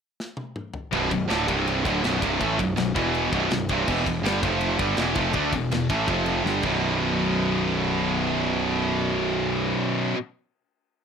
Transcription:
0.20 snare
0.37 high tom
0.56 mid tom
0.74 floor tom
0.91 picked electric bass B0, distorted electric guitar B1 F#2 B2, kick, ride
1.11 picked electric bass B0, distorted electric guitar B1 F#2, kick, ride
1.29 picked electric bass D1, distorted electric guitar D2 A2 D3, snare, ride
1.47 picked electric bass C1, distorted electric guitar C2 G2 C3, kick, ride
1.67 ride
1.83 picked electric bass D1, distorted electric guitar D2 A2 D3, kick, ride
2.04 picked electric bass B0, distorted electric guitar B1 F#2 B2, snare, ride
2.21 picked electric bass C1, distorted electric guitar C2 G2 C3, kick, ride
2.39 picked electric bass A1, distorted electric guitar A2 E3 A3, kick, ride
2.58 picked electric bass B0, distorted electric guitar B1 F#2, kick, ride
2.77 picked electric bass B0, distorted electric guitar B1 F#2, snare, ride
2.95 picked electric bass E1, distorted electric guitar E2 B2 E3, kick, ride
3.15 ride
3.32 picked electric bass B0, distorted electric guitar B1 F#2 B2, kick, ride
3.51 picked electric bass B0, distorted electric guitar B1 F#2, snare, ride
3.69 picked electric bass C1, distorted electric guitar C2 G2 C3, kick, ride
3.88 picked electric bass E1, distorted electric guitar E2 B2 E3, kick, crash
4.06 picked electric bass E1, distorted electric guitar E2 B2, kick, ride
4.23 picked electric bass G1, distorted electric guitar G2 D3 G3, snare, ride
4.42 picked electric bass F1, distorted electric guitar F2 C3 F3, kick, ride
4.61 ride
4.79 picked electric bass G1, distorted electric guitar G2 D3 G3, kick, ride
4.97 picked electric bass E1, distorted electric guitar E2 B2 E3, snare, ride
5.15 picked electric bass F1, distorted electric guitar F2 C3 F3, kick, ride
5.33 picked electric bass D2, distorted electric guitar D3 A3 D4, kick, ride
5.52 picked electric bass E1, distorted electric guitar E2 B2, kick, ride
5.70 picked electric bass E1, distorted electric guitar E2 B2, snare, ride
5.90 picked electric bass A1, distorted electric guitar A2 E3 A3, kick, ride
6.08 picked electric bass F1, distorted electric guitar F2 C3 F3, kick, ride
6.26 ride
6.45 picked electric bass G1, distorted electric guitar G2 D3 G3, snare
6.63 picked electric bass B0, distorted electric guitar B1 F#2, kick, crash
6.68 distorted electric guitar B2

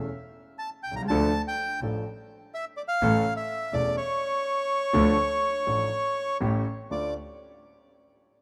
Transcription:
0.59 bandoneon A5
0.83 double bass C2, bandoneon G5
0.91 grand piano B1
0.96 grand piano C2, bandoneon A#5
1.03 grand piano C#2
1.08 double bass D2, grand piano D2 D3 F3 A3 D4 A4, bandoneon A5
1.48 bandoneon G5
1.81 double bass A1, grand piano A1 A2 F3 A3 D4 A4
2.55 bandoneon E5
2.77 bandoneon D5
2.88 bandoneon F5
3.02 grand piano A1 A2 E3 A3 C#4 A4, double bass A1
3.37 bandoneon E5
3.73 double bass E1, grand piano E1 E2 E3 A3 C#4 A4, bandoneon D5
3.97 bandoneon C#5
4.93 grand piano D2 D3 F3 A3 D4 A4, double bass D2
5.67 grand piano A1 A2 F3 A3 D4 A4, double bass A1
6.40 grand piano A1 A2 E3 A3 C#4 G4, double bass A1
6.90 double bass D2, grand piano D2 A3 D4 F4, bandoneon D5

